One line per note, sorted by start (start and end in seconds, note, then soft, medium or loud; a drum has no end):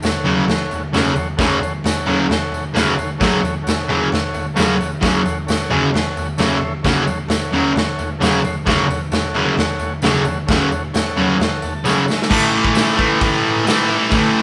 0.02 0.37 A4 medium
0.02 0.38 C#5 medium
0.02 0.38 F#5 loud
0.02 snare loud
0.02 floor tom medium
0.02 tambourine medium
0.24 0.43 F#2 loud
0.24 0.43 C#3 loud
0.24 0.44 F#3 loud
0.24 floor tom medium
0.24 tambourine soft
0.46 0.82 A4 medium
0.46 0.82 C#5 medium
0.46 0.83 F#5 medium
0.46 snare loud
0.46 floor tom medium
0.71 floor tom medium
0.71 tambourine medium
0.92 1.11 F#2 medium
0.92 1.12 C#3 medium
0.92 1.12 F#3 loud
0.92 1.28 A4 medium
0.92 1.28 C#5 medium
0.92 1.29 F#5 medium
0.92 snare loud
0.92 floor tom loud
0.92 tambourine medium
1.16 floor tom medium
1.16 tambourine medium
1.37 1.57 F#2 medium
1.37 1.57 C#3 loud
1.37 1.58 F#3 medium
1.37 1.73 A4 medium
1.37 1.73 C#5 medium
1.37 1.73 F#5 medium
1.37 kick loud
1.37 snare loud
1.37 floor tom medium
1.37 tambourine medium
1.61 floor tom medium
1.61 tambourine medium
1.84 2.19 A4 medium
1.84 2.20 C#5 medium
1.84 2.20 F#5 medium
1.84 snare loud
1.84 floor tom medium
1.84 tambourine loud
2.06 2.25 F#2 loud
2.06 2.25 C#3 loud
2.06 2.26 F#3 loud
2.06 floor tom medium
2.06 tambourine soft
2.28 2.64 A4 medium
2.28 2.64 C#5 medium
2.28 2.64 F#5 medium
2.28 snare loud
2.28 floor tom medium
2.52 floor tom medium
2.52 tambourine medium
2.74 2.93 F#2 medium
2.74 2.93 C#3 medium
2.74 2.94 F#3 medium
2.74 3.09 A4 medium
2.74 3.10 C#5 medium
2.74 3.11 F#5 medium
2.74 snare loud
2.74 floor tom medium
2.74 tambourine medium
2.98 floor tom medium
2.98 tambourine medium
3.18 3.39 F#2 medium
3.18 3.39 C#3 medium
3.18 3.39 F#3 loud
3.18 3.54 A4 medium
3.18 3.55 C#5 medium
3.18 3.55 F#5 loud
3.18 kick loud
3.18 floor tom medium
3.18 tambourine medium
3.22 snare loud
3.43 floor tom medium
3.43 tambourine medium
3.62 3.99 A4 medium
3.62 4.00 C#5 medium
3.62 4.00 F#5 medium
3.67 snare loud
3.67 floor tom medium
3.67 tambourine medium
3.88 4.07 F#2 loud
3.88 4.07 C#3 loud
3.88 4.08 F#3 loud
3.88 floor tom medium
3.88 tambourine soft
4.11 4.46 A4 medium
4.11 4.46 C#5 medium
4.11 4.47 F#5 medium
4.11 snare medium
4.11 floor tom medium
4.11 tambourine soft
4.34 floor tom medium
4.34 tambourine medium
4.54 4.75 F#2 medium
4.54 4.75 C#3 medium
4.54 4.75 F#3 loud
4.54 4.90 A4 medium
4.54 4.91 C#5 medium
4.54 4.91 F#5 loud
4.54 tambourine loud
4.58 snare loud
4.58 floor tom medium
4.81 floor tom medium
4.81 tambourine medium
5.01 5.20 F#2 medium
5.01 5.20 C#3 loud
5.01 5.21 F#3 loud
5.01 5.38 A4 medium
5.01 5.38 C#5 medium
5.01 5.38 F#5 loud
5.01 kick loud
5.01 snare loud
5.01 floor tom medium
5.01 tambourine medium
5.26 floor tom medium
5.26 tambourine medium
5.47 5.82 A4 medium
5.47 5.82 C#5 medium
5.47 5.83 F#5 medium
5.47 snare loud
5.47 floor tom medium
5.47 tambourine medium
5.70 5.88 F#2 loud
5.70 5.89 C#3 loud
5.70 5.89 F#3 loud
5.70 floor tom medium
5.70 tambourine soft
5.92 6.28 A4 medium
5.92 6.28 C#5 medium
5.92 6.29 F#5 medium
5.92 snare loud
5.92 floor tom medium
6.17 floor tom medium
6.17 tambourine medium
6.37 6.57 F#2 medium
6.37 6.57 C#3 medium
6.37 6.57 F#3 medium
6.37 6.73 A4 medium
6.37 6.73 C#5 medium
6.37 6.74 E5 medium
6.37 snare loud
6.37 floor tom medium
6.37 tambourine loud
6.61 floor tom medium
6.83 7.02 F#2 medium
6.83 7.03 C#3 medium
6.83 7.03 F#3 loud
6.83 7.19 A4 medium
6.83 7.19 C#5 medium
6.83 7.19 F#5 medium
6.83 kick loud
6.83 snare loud
6.83 floor tom medium
6.83 tambourine medium
7.07 floor tom medium
7.07 tambourine medium
7.27 7.64 A4 medium
7.27 7.64 C#5 medium
7.27 7.64 F#5 medium
7.27 snare loud
7.27 floor tom medium
7.27 tambourine medium
7.52 7.71 F#2 loud
7.52 7.71 C#3 loud
7.52 7.72 F#3 loud
7.52 floor tom medium
7.52 tambourine soft
7.74 8.10 A4 medium
7.74 8.10 C#5 medium
7.74 8.10 F#5 medium
7.74 snare loud
7.74 floor tom medium
7.99 floor tom medium
7.99 tambourine medium
8.19 8.39 F#2 medium
8.19 8.39 C#3 medium
8.19 8.40 F#3 loud
8.19 8.55 A4 medium
8.19 8.55 C#5 medium
8.19 8.56 F#5 medium
8.19 floor tom medium
8.19 tambourine medium
8.23 snare loud
8.44 floor tom medium
8.44 tambourine medium
8.65 8.84 F#2 medium
8.65 8.85 C#3 loud
8.65 8.85 F#3 loud
8.65 9.01 A4 medium
8.65 9.01 C#5 medium
8.65 9.01 F#5 medium
8.65 kick loud
8.65 floor tom medium
8.65 tambourine medium
8.69 snare loud
8.90 floor tom medium
8.90 tambourine medium
9.11 9.47 A4 medium
9.11 9.47 C#5 medium
9.11 9.47 F#5 medium
9.11 snare loud
9.11 floor tom medium
9.11 tambourine medium
9.34 9.53 F#2 loud
9.34 9.53 C#3 loud
9.34 9.54 F#3 loud
9.34 floor tom medium
9.34 tambourine soft
9.57 9.93 A4 medium
9.57 9.93 C#5 medium
9.57 9.93 F#5 loud
9.57 snare loud
9.57 floor tom medium
9.79 floor tom medium
9.79 tambourine medium
10.02 10.21 F#2 medium
10.02 10.22 C#3 medium
10.02 10.22 F#3 loud
10.02 10.38 A4 medium
10.02 10.39 C#5 medium
10.02 10.39 F#5 medium
10.02 snare loud
10.02 floor tom medium
10.02 tambourine medium
10.25 floor tom medium
10.25 tambourine medium
10.47 10.68 F#2 medium
10.47 10.68 C#3 loud
10.47 10.83 A4 medium
10.47 10.83 C#5 medium
10.47 10.83 F#5 loud
10.47 kick loud
10.47 snare loud
10.47 floor tom medium
10.47 tambourine medium
10.51 10.68 F#3 loud
10.71 floor tom medium
10.71 tambourine medium
10.93 11.29 A4 medium
10.93 11.29 C#5 medium
10.93 11.30 F#5 medium
10.93 snare loud
10.93 floor tom medium
10.93 tambourine medium
11.16 11.35 F#2 loud
11.16 11.35 C#3 loud
11.16 11.36 F#3 loud
11.16 floor tom medium
11.16 tambourine soft
11.37 11.74 A4 medium
11.37 11.74 C#5 medium
11.37 11.74 F#5 medium
11.37 floor tom medium
11.37 tambourine soft
11.41 snare loud
11.62 11.84 A5 medium
11.62 floor tom medium
11.62 tambourine medium
11.84 12.03 F#2 medium
11.84 12.03 C#3 medium
11.84 12.04 F#3 medium
11.84 12.20 A4 medium
11.84 12.20 C#5 medium
11.84 12.20 F#5 medium
11.84 tambourine loud
11.88 snare medium
12.06 12.28 E5 medium
12.06 tambourine medium
12.10 snare medium
12.22 snare medium
12.30 13.01 A2 medium
12.30 12.99 E3 medium
12.30 12.96 A3 medium
12.30 kick loud
12.30 crash loud
12.65 kick medium
12.75 snare loud
12.75 open hi-hat medium
12.75 tambourine medium
12.97 13.66 E3 medium
12.97 13.64 A3 loud
12.97 kick medium
13.01 13.64 A2 medium
13.21 kick loud
13.21 open hi-hat medium
13.65 14.10 A2 medium
13.65 14.11 E3 medium
13.65 14.12 A3 medium
13.65 snare loud
13.65 open hi-hat medium
13.65 tambourine medium
14.11 14.42 A2 medium
14.11 14.42 E3 medium
14.11 14.42 A3 loud
14.11 kick loud
14.11 open hi-hat medium